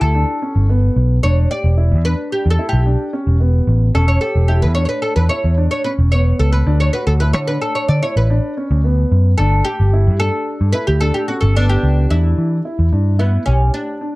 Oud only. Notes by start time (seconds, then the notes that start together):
0.01 A4
1.23 C#5
1.51 D5
2.05 B4
2.32 G4
2.50 A4
2.69 G4
3.95 A4
4.08 C#5
4.21 A4
4.48 G4
4.62 B4
4.75 C#5
4.85 B4 C#5
5.02 A4
5.16 B4
5.29 C#5
5.71 C#5
5.84 B4
6.12 C#5
6.39 A4
6.52 B4
6.80 C#5
6.93 B4
7.07 A4
7.20 B4
7.33 C#5
7.47 B4
7.62 A4
7.75 C#5
7.89 D5
8.03 C#5
8.17 B4
9.38 A4
9.65 G4
10.20 A4
10.73 B4
10.87 G4
11.00 A4
11.14 G4
11.28 F#4
11.41 A4
11.56 D4
11.69 G4
12.10 E4
13.19 B3
13.46 C#4
13.74 D4